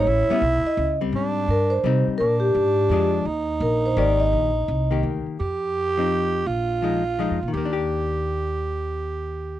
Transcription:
X:1
M:3/4
L:1/16
Q:"Swing" 1/4=169
K:Eb
V:1 name="Vibraphone"
_d2 =e4 _e4 z2 | z4 B2 c4 z2 | B2 G8 z2 | z4 B2 c2 d2 e2- |
e8 z4 | z12 | z12 | z12 |
z12 |]
V:2 name="Tenor saxophone"
=E8- E2 z2 | D8- D z3 | D12 | E12- |
E8- E2 z2 | G12 | F12 | G12- |
G12 |]
V:3 name="Hollow-body jazz guitar"
z2 [G,=B,^C]2 z6 [G,=C]2- | [G,C]4 z4 [G,CE]4 | z8 [F,A,D]4 | z8 [E,B,G]4- |
[E,B,G]2 z4 [E,B,G]6 | z6 [F,CE]6 | z4 [F,A,E]2 z2 [F,A,E]2 z2 | [E,B,DG]12- |
[E,B,DG]12 |]
V:4 name="Upright bass" clef=bass
=A,,,2 z2 =B,,,2 z2 ^C,,4 | A,,4 G,,4 C,2 z2 | B,,4 A,,4 F,,4 | E,,4 B,,,4 A,,,4 |
B,,,4 C,,4 D,,2 z2 | F,,12 | B,,,8- (3B,,,2 F,,2 B,,2 | E,,12- |
E,,12 |]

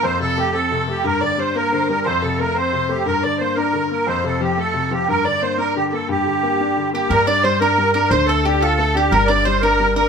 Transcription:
X:1
M:6/8
L:1/16
Q:3/8=119
K:Gm
V:1 name="Accordion"
c2 A2 G2 A4 G2 | B2 d2 c2 B4 B3/2 B/2 | c2 A2 B2 c4 G2 | B2 d2 c2 B4 B2 |
c2 A2 G2 A4 G2 | B2 d2 c2 B2 G2 A2 | G8- G2 G2 | B2 d2 c2 B4 B2 |
c2 A2 G2 A4 G2 | B2 d2 c2 B4 B2 |]
V:2 name="Fiddle"
c2 A4 A6 | B2 d2 c2 B2 c2 B2 | c2 A2 B2 c6 | B2 d2 c2 B6 |
c4 G2 A4 G2 | B2 d2 c2 B2 G2 A2 | G8- G2 G2 | B2 d2 c2 B4 B2 |
c2 A2 G2 A2 A2 G2 | B2 d2 c2 B4 B2 |]
V:3 name="Mandolin"
z12 | z12 | z12 | z12 |
z12 | z12 | z8 z2 G2 | B2 d2 c2 B4 B2 |
c2 A2 G2 A4 G2 | B2 d2 c2 B4 B2 |]
V:4 name="Grand piano" clef=bass
F,,2 C,2 A,2 C2 C,2 A,2 | G,,2 D,2 G,2 B,2 D,2 G,2 | F,,2 C,2 A,2 C2 C,2 A,2 | G,,2 D,2 B,2 D2 D,2 B,2 |
F,,2 C,2 F,2 A,2 C,2 F,2 | G,,2 D,2 B,2 D2 D,2 B,2 | G,,2 D,2 B,2 D2 D,2 B,2 | G,2 D2 G,2 D2 G,2 D2 |
D,2 A,2 D2 F2 A,2 D2 | G,2 D2 G,2 D2 G,2 D2 |]
V:5 name="Upright bass" clef=bass
z12 | z12 | z12 | z12 |
z12 | z12 | z12 | G,,12 |
D,,12 | G,,,12 |]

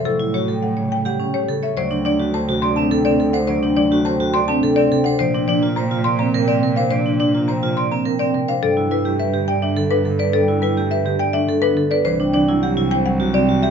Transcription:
X:1
M:3/4
L:1/16
Q:1/4=105
K:Amix
V:1 name="Marimba"
A z c z f z g f z c z e | [K:Dmix] c z d z a z c' a z d z f | c z d z a z c' a z d z f | c z d z _b z c' b z d z =f |
c z d z _b z c' b z d z =f | A z B z e z g e z B z d | A z B z e z g e z B z d | c z d z f z g f z d z e |]
V:2 name="Vibraphone"
E E F A z c z G C G A c | [K:Dmix] d D D F c F d C A C A c | d D D F c F d C A C A c | d D D =F c F d C _B C B c |
d D D =F c F d C _B C B c | d E E G B G d D A D A B | d E E G B G d D A D A B | c D D E G E c z F C F G |]
V:3 name="Harp" clef=bass
[F,A,]2 F, G,2 C,2 G, C, A, C, C | [K:Dmix] F, C F, A, C C, D A, C, C C, D | F, C F, A, C C, D A, C, C C, D | =F, C F, _B, C C,2 B, C, C C, D |
=F, C F, _B, C C,2 B, C, C C, D | G, B, G, A,2 D,2 A, D, B, D, D | G, B, G, A,2 D,2 A, D, B, D, D | E, G, E, F,2 C,2 F, C, G, C, C |]
V:4 name="Cello" clef=bass
A,,12 | [K:Dmix] D,,12- | D,,12 | _B,,12- |
_B,,12 | G,,12- | G,,12 | C,,12 |]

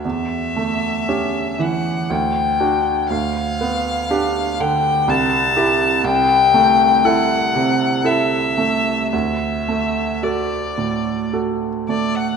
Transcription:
X:1
M:3/4
L:1/16
Q:1/4=59
K:Ador
V:1 name="Violin"
e6 f2 g4 | =f6 g2 a4 | g4 f4 e4 | e4 d4 z2 d f |]
V:2 name="Grand piano"
E,,2 A,2 [^CG]2 E,2 D,,2 [DF]2 | D,,2 B,2 [DG]2 D,2 C,,2 [EG]2 | C,,2 A,2 [EA]2 C,2 [EA]2 A,2 | D,,2 A,2 [FA]2 A,,2 [FA]2 A,2 |]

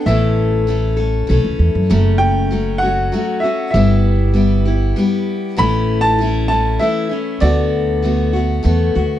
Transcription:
X:1
M:3/4
L:1/16
Q:1/4=98
K:Amix
V:1 name="Upright piano"
e6 z6 | z2 g4 f4 e2 | e8 z4 | b3 a3 a2 e4 |
d6 z6 |]
V:2 name="Steel-string acoustic guitar"
[A,,E,A,CA]4 [E,A,CA]2 [A,CA]2 [E,A,CA]4 | [F,,C,F,A,C]4 [F,A,C]2 [F,A,CF]2 [F,A,CF]2 [F,A,CF]2 | [G,B,EG]4 [G,B,EG]2 [B,EG]2 [G,B,EG]4 | [A,,E,A,CE]4 [E,A,CE]2 [A,CE]2 [E,A,CE]2 [A,CE]2 |
[D,A,B,F]4 [D,A,B,F]2 [A,B,F]2 [D,A,B,F]2 [A,B,F]2 |]
V:3 name="Upright bass" clef=bass
A,,,8 B,,, C,, E,, F,, | F,,,8 z4 | G,,,8 z4 | A,,,8 z4 |
D,,8 E,,2 D,,2 |]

